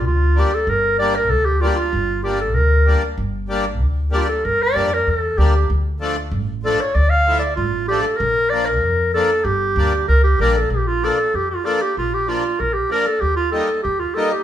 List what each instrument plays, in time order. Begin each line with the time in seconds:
0.04 upright bass D2, clarinet F4
0.35 accordion G3 A#3 D4, clarinet G4
0.55 clarinet A4
0.67 upright bass G1, clarinet A#4
0.99 accordion G3 A#3 D4, clarinet D5
1.15 clarinet A#4
1.30 upright bass D2, clarinet A4
1.45 clarinet G4
1.61 accordion G3 A#3 D4, clarinet F4
1.67 clarinet G4
1.76 clarinet F4
1.93 upright bass G1
2.23 accordion G3 A#3 D4, clarinet G4
2.40 clarinet A4
2.55 upright bass D2, clarinet A#4
2.86 accordion G3 A#3 D4
3.18 upright bass G1
3.49 accordion G3 A#3 D4
3.81 upright bass D2
4.11 accordion G3 A#3 D4, clarinet G4
4.17 clarinet F4 G4
4.28 clarinet A4
4.45 upright bass G1, clarinet A#4
4.63 clarinet D5
4.74 upright bass F2, accordion G3 A#3 D4
4.93 clarinet A#4
5.07 upright bass E2, clarinet A4
5.38 upright bass D2, accordion G3 A#3 D4, clarinet G4
5.70 upright bass D2
6.00 accordion F3 A3 D4
6.32 upright bass A1
6.63 accordion F3 A3 D4, clarinet A4
6.80 clarinet C#5
6.95 upright bass D2, clarinet D5
7.10 clarinet F5
7.27 accordion F3 A3 E4
7.39 clarinet D5
7.56 upright bass A1, clarinet F4
7.88 accordion F3 A3 D4, clarinet G4
8.02 clarinet A4
8.17 upright bass A#1, clarinet A#4
8.50 accordion F3 A#3 D4, clarinet D5
8.66 clarinet A#4
8.82 upright bass F2
9.14 accordion F3 A#3 D4, clarinet A4
9.45 upright bass G1, clarinet G4
9.76 upright bass D2, accordion G3 A#3 D4
10.08 upright bass C#2, clarinet A#4
10.24 clarinet G4
10.40 upright bass A#1, accordion G3 A#3 D4, clarinet A#4
10.53 clarinet A4 A#4
10.70 upright bass A#1, clarinet G4
10.87 clarinet F4
11.02 accordion F3 A#3 D4, clarinet A4
11.34 upright bass F2, clarinet G4
11.50 clarinet F4
11.64 accordion F3 A#3 D4, clarinet A4
11.82 clarinet G4
11.97 upright bass A#1, clarinet F4
12.14 clarinet G4
12.27 accordion F3 A#3 D4, clarinet F4
12.60 upright bass A#1, clarinet A#4
12.74 clarinet G4
12.90 accordion F3 A#3 D4, clarinet A#4
13.07 clarinet A4
13.21 upright bass D#2, clarinet G4
13.36 clarinet F4
13.52 accordion G3 A#3 D#4, clarinet A4
13.83 upright bass D#2, clarinet G4
13.99 clarinet F4
14.14 accordion G3 A#3 D#4, clarinet A4
14.31 clarinet G4